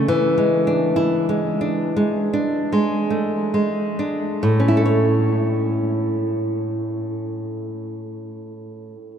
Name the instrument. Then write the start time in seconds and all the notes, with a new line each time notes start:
nylon-string guitar
0.08 E3
0.38 G#3
0.67 D4
0.96 E4
1.29 G#3
1.61 D4
1.96 G#3
2.33 D4
2.73 G#3
3.10 A3
3.54 G#3
3.99 D4
4.43 A2
4.60 C#4
4.68 E4
4.77 A4
4.85 C#5